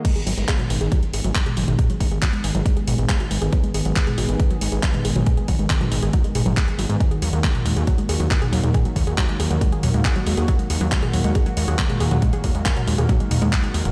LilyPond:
<<
  \new Staff \with { instrumentName = "Analog synth pad" } { \time 4/4 \key gis \minor \tempo 4 = 138 << { <gis b gis'>1~ | <gis b gis'>1~ | <gis b gis'>1~ | <gis b gis'>1 |
<fis ais fis'>1~ | <fis ais fis'>1~ | <fis ais fis'>1~ | <fis ais fis'>1 | } \\ { dis1~ | dis1~ | dis1~ | dis1~ |
dis1~ | dis1~ | dis1~ | dis1 | } >> }
  \new Staff \with { instrumentName = "Synth arpeggio sound" } { \clef bass \time 4/4 \key gis \minor gis16 gis'16 fis16 gis16 gis'16 fis16 gis16 gis'16 fis16 gis16 gis'16 fis16 gis16 gis'16 fis16 gis16 | gis'16 fis16 gis16 gis'16 fis16 gis16 gis'16 fis16 gis16 gis'16 fis16 gis16 gis'16 fis16 gis16 gis'16 | fis16 gis16 gis'16 fis16 r16 gis'16 fis16 gis16 gis'16 fis16 gis16 gis'16 fis16 gis16 gis'16 fis16 | gis16 gis'16 fis16 gis16 gis'16 fis16 gis16 gis'16 fis16 gis16 gis'16 fis16 gis16 gis'16 fis16 gis16 |
gis16 gis'16 fis16 gis16 gis'16 fis16 gis16 gis'16 fis16 gis16 gis'16 fis16 gis16 gis'16 fis16 gis16 | gis'16 fis16 gis16 gis'16 fis16 gis16 gis'16 fis16 gis16 gis'16 fis16 gis16 gis'16 fis16 gis16 gis'16 | fis16 gis16 gis'16 fis16 gis16 gis'16 fis16 gis16 gis'16 fis16 gis16 gis'16 fis16 gis16 gis'16 fis16 | gis16 gis'16 fis16 gis16 gis'16 fis16 gis16 gis'16 fis16 gis16 dis'16 gis16 gis16 gis'16 gis16 gis,16 | }
  \new Staff \with { instrumentName = "Analog synth bass" } { \clef bass \time 4/4 \key gis \minor r8 gis,,16 gis,,16 r8 gis,,16 gis,,16 r8 gis,,16 gis,,16 r8 gis,,16 gis,,16 | r8 gis,,16 gis,,16 r8 gis,,16 gis,,16 r8 gis,,16 gis,,16 r8 gis,,16 gis,,16 | r8 gis,,16 gis,,16 r8 gis,,16 gis,,16 r8 gis,,16 gis,,16 r8 gis,,16 gis,,16 | r8 gis,,16 gis,,16 r8 gis,,16 gis,,16 r8 gis,,16 gis,,16 r8 gis,,16 gis,16 |
r8 dis,16 dis,16 r8 dis,16 dis,16 r8 dis,16 dis,16 r8 dis,16 dis,16 | r8 dis,16 dis,16 r8 dis,16 dis,16 r8 dis,16 dis,16 r8 dis,16 dis,16 | r8 dis,16 dis,16 r8 dis,16 dis,16 r8 dis,16 dis,16 r8 dis,16 dis,16 | r8 dis,16 dis,16 r8 dis,16 dis,16 r8 dis,16 dis,16 r8 dis,16 dis,,16 | }
  \new DrumStaff \with { instrumentName = "Drums" } \drummode { \time 4/4 <cymc hh bd>16 hh16 hho16 hh16 <hc hh bd>16 <hh toml>16 hho8 <hh bd>16 hh16 hho16 hh16 <hc hh bd>16 <hh toml>16 hho16 <hh toml>16 | <hh bd>16 hh16 <hho bd>16 hh16 <hc hh bd>16 hh16 hho16 hh16 <hh bd>16 hh16 <hho toml>16 hh16 <hc hh bd>16 hh16 hho16 hh16 | <hh bd>16 hh16 hho16 hh16 <hc hh bd>16 <hh toml>16 hho16 hh16 <hh bd>16 hh16 hho16 hh16 <hc hh bd>16 <hh toml>16 hho16 <hh toml>16 | <hh bd>16 hh16 <hho bd>16 hh16 <hc hh bd>16 <hh toml>16 hho16 hh16 <hh bd>16 hh16 <hho toml>16 hh16 <hc hh bd>16 hh16 hho16 hh16 |
<hh bd>16 hh16 hho16 hh16 <hc hh bd>16 <hh toml>16 hho16 hh16 <hh bd>16 hh16 hho16 hh16 <hc hh bd>16 <hh toml>16 hho16 <hh toml>16 | <hh bd>16 hh16 <hho bd>16 hh16 <hc hh bd>16 hh16 hho16 hh16 <hh bd>16 hh16 <hho toml>16 hh16 <hc hh bd>16 hh16 hho16 hh16 | <hh bd>16 hh16 hho16 hh16 <hc hh bd>16 <hh toml>16 hho16 hh16 <hh bd>16 hh16 hho16 hh16 <hc hh bd>16 <hh toml>16 hho16 <hh toml>16 | <hh bd>16 hh16 <hho bd>16 hh16 <hc hh bd>16 <hh toml>16 hho16 <hh toml>16 <hh bd>16 hh16 <hho toml>16 hh16 <hc hh bd>16 hh16 hho16 hh16 | }
>>